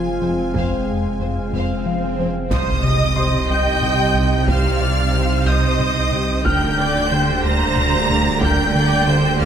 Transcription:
Already playing: sub bass F1, viola section G#3, ambient pad G#3 C4 F4 F5, french horn section F4, violin section G#5
0.22 double bass section F1, cello section F2, analog synth bass F3, viola section C4, violin section C5
0.54 double bass section F1, cello section F2, analog synth bass F2, viola section G#3, french horn section C4, violin section C5 F5, taiko, swell
0.88 analog synth bass F2, taiko low-mid
1.20 double bass section F1, analog synth bass F2, cello section F2, violin section C5
1.53 double bass section F1, cello section F2, analog synth bass F2, violin section C5 F5
1.86 analog synth bass F3, grand piano F5
2.18 double bass section F1, cello section F2, analog synth bass F3, violin section C5
2.51 double bass section C2, analog synth bass C2, sub bass C2, cello section C3, ambient pad G3 C4 D#4 G4, viola section C5, violin section D#5 D#6, taiko, impact
2.84 analog synth bass C3, viola section D#5
3.16 analog synth bass C3, french horn section C4 G4, grand piano C5 C6, viola section D#5
3.49 analog synth bass C2, violin section G5 G6
3.82 analog synth bass C2, taiko mid
4.14 analog synth bass C2, french horn section C4 G4, taiko mid
4.48 analog synth bass C2, viola section C5, violin section F5 F6, taiko
4.81 analog synth bass C3, viola section D5
5.14 analog synth bass C3, french horn section C4 G4, viola section C5
5.46 analog synth bass C2, violin section D#5 D#6, grand piano G6
5.79 analog synth bass C2, taiko mid
6.12 analog synth bass C2, french horn section C4 G4, taiko mid
6.44 sub bass D1, double bass section D2, analog synth bass D2, cello section D3, ambient pad G3 A#3 G4 D5, viola section A#4, violin section G5 G6, grand piano F6, taiko
6.77 analog synth bass D3, viola section D5
7.10 analog synth bass D3, french horn section A#3 G4, viola section C5
7.44 analog synth bass D2, violin section A#5 A#6
7.76 analog synth bass D2, taiko mid
8.09 analog synth bass D2, french horn section A#3 G4, taiko mid
8.41 analog synth bass D2, viola section A#4, violin section G5 G6, grand piano G6, taiko
8.75 analog synth bass D3, viola section D5
9.08 analog synth bass D3, french horn section A#3 G4, viola section C5
9.40 analog synth bass D2, viola section D5, violin section F5 F6

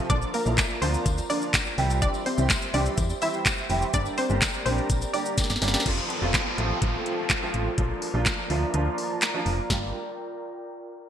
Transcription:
0.10 fm bass A#1, grand piano D3 F3 A#3 D4 F4, synth pluck D4 D5, analog synth pad F4 A#4 D5 A#5, kick, closed hi-hat, shaker
0.22 shaker
0.34 synth pluck A#3 A#4, open hi-hat, tambourine, shaker
0.46 fm bass A#1, grand piano D3 F3 A#3 D4 E4, tambourine, shaker
0.58 kick, snare, clap, closed hi-hat, tambourine, shaker
0.70 shaker
0.82 fm bass D2, grand piano D3 F3 A#3 D4 F4, synth pluck C4 C5, open hi-hat, tambourine, shaker
0.94 shaker
1.06 fm bass D2, kick, closed hi-hat, tambourine, shaker
1.18 tambourine, shaker
1.30 grand piano D3 F3 A#3 D4 F4, synth pluck D4 D5, open hi-hat, tambourine, shaker
1.42 shaker
1.54 kick, snare, clap, closed hi-hat, tambourine, shaker
1.66 shaker
1.78 fm bass C2, grand piano E3 G3 C4 E4 G4, analog synth pad G4 C5 E5 C6, open hi-hat, tambourine, shaker
1.90 tambourine, shaker
2.02 synth pluck D4 D5, kick, closed hi-hat, shaker
2.14 tambourine, shaker
2.26 synth pluck C4 C5, open hi-hat, tambourine, shaker
2.38 fm bass C2, grand piano E3 G3 C4 E4 G4, tambourine, shaker
2.50 kick, snare, clap, closed hi-hat, tambourine, shaker
2.62 shaker
2.74 fm bass C2, grand piano E3 G3 C4 E4 G4, synth pluck D4 D5, open hi-hat, tambourine, shaker
2.86 shaker
2.98 fm bass E2, kick, closed hi-hat, tambourine, shaker
3.09 tambourine, shaker
3.22 grand piano E3 G3 C4 E4 G4, synth pluck E4 E5, open hi-hat, tambourine, shaker
3.34 shaker
3.46 kick, snare, clap, closed hi-hat, tambourine, shaker
3.58 tambourine, shaker
3.70 fm bass F1, grand piano E3 G3 C4 E4 G4, open hi-hat, tambourine, shaker
3.82 tambourine, shaker
3.94 fm bass G1, grand piano D3 G3 A#3 D4 G4, synth pluck D4 D5, analog synth pad G4 A#4 D5 A#5, kick, closed hi-hat, shaker
4.06 tambourine, shaker
4.18 synth pluck C4 C5, open hi-hat, tambourine, shaker
4.30 fm bass G1, grand piano D3 G3 A#3 D4 G4, shaker
4.42 kick, snare, clap, closed hi-hat, tambourine, shaker
4.54 shaker
4.66 fm bass A#1, grand piano D3 G3 A#3 D4 G4, synth pluck C4 C5, open hi-hat, tambourine, shaker
4.78 shaker
4.90 fm bass A#1, kick, closed hi-hat, tambourine, shaker
5.02 tambourine, shaker
5.14 grand piano D3 G3 A#3 D4 G4, synth pluck D4 D5, open hi-hat, tambourine, shaker
5.26 shaker
5.38 kick, snare, closed hi-hat, tambourine, shaker
5.44 snare
5.50 fm bass G1, snare, shaker
5.56 snare
5.62 fm bass G1, grand piano D3 G3 A#3 D4 G4, snare, open hi-hat, tambourine, shaker
5.68 snare
5.74 snare, tambourine, shaker
5.80 snare
5.86 fm bass F1, grand piano F3 A3 C4 F4, analog synth pad F4 A4 C5 A5, kick, closed hi-hat, crash, downlifter
6.10 closed hi-hat
6.22 fm bass F1, grand piano F3 A3 C4 F4
6.34 kick, snare, clap, closed hi-hat
6.58 fm bass A1, grand piano F3 A3 C4 F4, closed hi-hat
6.82 fm bass A1, grand piano F3 A3 C4 F4, kick, closed hi-hat
7.06 closed hi-hat
7.30 kick, snare, clap, closed hi-hat
7.42 grand piano F3 A3 C4 F4
7.54 fm bass A1, closed hi-hat
7.78 fm bass A#1, grand piano F3 A#3 D4 F4, analog synth pad A#4 D5 A#5, kick, closed hi-hat
8.02 open hi-hat
8.14 fm bass A#1, grand piano F3 A#3 D4 F4
8.26 kick, snare, clap, closed hi-hat
8.50 fm bass D2, grand piano F3 A#3 D4 F4 E5, open hi-hat
8.74 fm bass D2, grand piano F3 A#3 D4 F4 F5, closed hi-hat
8.98 open hi-hat
9.10 grand piano A5
9.22 grand piano A#5, snare, clap, closed hi-hat
9.34 grand piano F3 A#3 D4 F4
9.46 fm bass F1, open hi-hat
9.70 fm bass G1, grand piano G3 A#3 D4 F4, analog synth pad F4 A#4 D5 G5, kick, snare

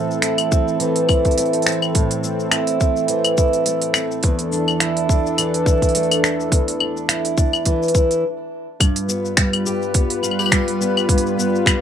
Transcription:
Already playing: steel-string acoustic guitar A2 E3 A3 C4 E4, analog synth pad E3 C4 A4
0.11 shaker
0.22 steel-string acoustic guitar E4, finger snap, open hi-hat, shaker
0.38 open hi-hat, claves
0.52 steel-string acoustic guitar C4, kick, shaker
0.68 shaker
0.80 steel-string acoustic guitar E3, open hi-hat, shaker
0.96 open hi-hat
1.09 steel-string acoustic guitar E4, kick, claves, shaker
1.25 kick, open hi-hat, shaker
1.31 open hi-hat
1.38 steel-string acoustic guitar A3, open hi-hat, shaker
1.46 open hi-hat
1.53 open hi-hat
1.62 steel-string acoustic guitar C4, open hi-hat
1.67 finger snap, shaker
1.72 open hi-hat
1.82 claves, shaker
1.95 steel-string acoustic guitar A2, kick, open hi-hat, shaker
2.11 open hi-hat, shaker
2.23 steel-string acoustic guitar C4, shaker
2.40 shaker
2.52 steel-string acoustic guitar E4, finger snap, open hi-hat, claves, shaker
2.67 open hi-hat
2.81 steel-string acoustic guitar C4, kick, shaker
2.96 shaker
3.08 steel-string acoustic guitar E3, open hi-hat, shaker
3.24 open hi-hat, claves
3.38 steel-string acoustic guitar E4, kick, shaker
3.53 open hi-hat, shaker
3.66 steel-string acoustic guitar A3, open hi-hat, shaker
3.82 open hi-hat
3.94 steel-string acoustic guitar C4, finger snap, claves, shaker
4.11 shaker
4.23 steel-string acoustic guitar E2, analog synth pad E3 D4 A4, kick, open hi-hat, shaker
4.39 open hi-hat, shaker
4.52 steel-string acoustic guitar D4, shaker
4.68 claves, shaker
4.80 steel-string acoustic guitar E4, finger snap, open hi-hat, shaker
4.97 open hi-hat
5.09 steel-string acoustic guitar D4, kick, shaker
5.26 shaker
5.38 steel-string acoustic guitar E3, open hi-hat, claves, shaker
5.54 open hi-hat
5.66 steel-string acoustic guitar E4, kick, shaker
5.82 kick, open hi-hat, shaker
5.89 open hi-hat
5.95 steel-string acoustic guitar A3, open hi-hat, shaker
6.03 open hi-hat
6.11 open hi-hat, claves
6.24 steel-string acoustic guitar D4, finger snap, shaker
6.40 shaker
6.52 steel-string acoustic guitar E2, kick, open hi-hat, shaker
6.68 open hi-hat, shaker
6.80 steel-string acoustic guitar D4, claves
6.97 shaker
7.09 steel-string acoustic guitar E4, finger snap, open hi-hat, shaker
7.25 open hi-hat, shaker
7.38 steel-string acoustic guitar D4, kick, shaker
7.53 claves, shaker
7.66 steel-string acoustic guitar E3, kick, open hi-hat, shaker
7.83 shaker
7.88 open hi-hat
7.94 steel-string acoustic guitar E4, kick, shaker
8.11 open hi-hat, shaker
8.80 steel-string acoustic guitar G2, analog synth pad G3 F4 B4, kick, open hi-hat, claves, shaker
8.96 open hi-hat, shaker
9.08 steel-string acoustic guitar B3, shaker
9.25 shaker
9.37 steel-string acoustic guitar G3, finger snap, kick, open hi-hat, shaker
9.53 open hi-hat, claves
9.66 steel-string acoustic guitar G4, shaker
9.82 shaker
9.94 steel-string acoustic guitar B3, kick, open hi-hat, shaker
10.10 open hi-hat
10.23 steel-string acoustic guitar F4, claves, shaker
10.31 claves
10.39 steel-string acoustic guitar G4, claves, shaker
10.46 claves
10.52 steel-string acoustic guitar G3, finger snap, kick, open hi-hat, shaker
10.68 open hi-hat
10.81 steel-string acoustic guitar B3, shaker
10.97 claves, shaker
11.09 steel-string acoustic guitar G2, kick, open hi-hat, shaker
11.18 open hi-hat
11.26 shaker
11.37 steel-string acoustic guitar B3, shaker
11.56 shaker
11.66 steel-string acoustic guitar G3, finger snap, kick, open hi-hat, claves, shaker

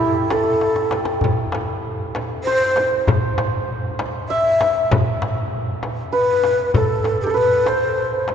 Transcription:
Already playing: ney E4, santur E4 G4 A4
0.30 santur A4, ney A4, tombak tek, frame drum
0.61 tombak tek
0.76 tombak ka
0.91 tombak tek, frame drum
1.05 tombak ka
1.21 tombak dum, frame drum
1.52 tombak tek, frame drum
2.15 tombak tek, frame drum
2.44 ney C5, santur C5, tombak ka
2.76 tombak tek, frame drum
2.92 tombak ka
3.07 tombak dum, frame drum
3.38 tombak tek, frame drum
3.99 tombak tek, frame drum
4.29 ney E5, santur E5, tombak ka
4.61 tombak tek, frame drum
4.77 tombak ka
4.91 frame drum, tombak dum
5.22 tombak tek
5.83 tombak tek, frame drum
6.13 santur B4, ney B4, tombak ka
6.44 tombak tek, frame drum
6.59 tombak ka
6.74 ney A4, santur A4, tombak dum, frame drum
7.04 tombak tek, frame drum
7.21 ney G4 A4
7.27 santur A4, ney A4
7.34 santur B4, ney B4, tombak ka
7.66 santur C5, ney C5, tombak tek, frame drum
8.28 tombak tek, frame drum

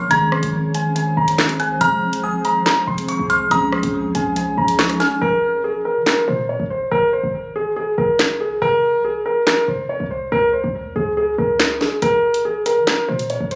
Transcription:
Already playing: tine electric piano F3 A#3 C#4 A#4
0.08 808-style bass G#1, tine electric piano D#3 G#3 C4, ambient pad D#3 C4 G#4 C5, grand piano A#5, synth bell G#6, closed hi-hat
0.13 tine electric piano G#4
0.32 grand piano C6, cross-stick
0.43 808-style bass G#1, closed hi-hat
0.74 grand piano G#5, closed hi-hat
0.96 grand piano G#5, closed hi-hat
1.17 808-style bass G#1, grand piano A#5
1.28 closed hi-hat
1.39 snare, clap
1.49 closed hi-hat
1.60 808-style bass C2, grand piano G#5, synth bell F#6, closed hi-hat
1.79 808-style bass F1, tine electric piano F3 G#3 C4, ambient pad F3 C4 G#4, grand piano A#5, synth bell F6, closed hi-hat
1.84 tine electric piano G#4
2.13 808-style bass C2, closed hi-hat
2.24 grand piano G#5, synth bell D#6
2.45 grand piano A#5, closed hi-hat
2.66 grand piano A#5, snare, clap
2.87 808-style bass F1, grand piano C6
2.98 closed hi-hat
3.08 synth bell C#6, grand piano C#6, closed hi-hat
3.19 808-style bass C2
3.30 grand piano C6, synth bell F6, closed hi-hat
3.49 808-style bass C#2, tine electric piano F3 G#3 C#4, ambient pad C#4 C#5, grand piano A#5, synth bell D#6, closed hi-hat
3.54 tine electric piano G#4
3.72 grand piano C6, cross-stick
3.83 808-style bass C#2, closed hi-hat
4.04 808-style bass F2
4.15 808-style bass C#2, grand piano G#5, closed hi-hat
4.36 grand piano G#5, closed hi-hat
4.58 808-style bass C#2, grand piano A#5
4.68 closed hi-hat
4.78 tine electric piano F3 G#3 C#4 D#4, synth bell C#6, snare, clap
4.89 cross-stick, closed hi-hat
5.00 grand piano G#5, synth bell F6, snare, closed hi-hat
5.21 808-style bass A#1, grand piano A#4
5.64 grand piano G#4
5.85 grand piano A#4
5.96 808-style bass F3
6.06 grand piano A#4, snare, clap
6.28 808-style bass A#2, grand piano C5
6.49 grand piano C#5
6.60 808-style bass A#1
6.70 grand piano C5
6.91 808-style bass G#1, grand piano A#4
7.13 grand piano C5
7.24 808-style bass G#1
7.56 grand piano G#4
7.76 grand piano G#4
7.98 808-style bass G#1, grand piano A#4
8.19 snare, clap
8.41 808-style bass C2, grand piano G#4
8.62 808-style bass F1, grand piano A#4
8.94 808-style bass C2
9.05 grand piano G#4
9.26 grand piano A#4
9.47 grand piano A#4, snare, clap
9.68 808-style bass F1, grand piano C5
9.89 grand piano C#5
10.00 808-style bass C2
10.11 grand piano C5
10.32 808-style bass C#2, grand piano A#4
10.53 grand piano C5
10.64 808-style bass C#2
10.85 808-style bass F2
10.96 808-style bass C#2, grand piano G#4
11.17 grand piano G#4
11.38 808-style bass C#2, grand piano A#4
11.60 snare, clap
11.81 grand piano G#4, snare
12.02 808-style bass A#1, grand piano A#4, closed hi-hat
12.34 closed hi-hat
12.45 grand piano G#4
12.66 grand piano A#4, closed hi-hat
12.77 808-style bass F3
12.87 grand piano A#4, snare, clap
13.09 808-style bass A#2, grand piano C5
13.19 closed hi-hat
13.30 grand piano C#5, closed hi-hat
13.40 808-style bass A#1
13.51 grand piano C5, closed hi-hat

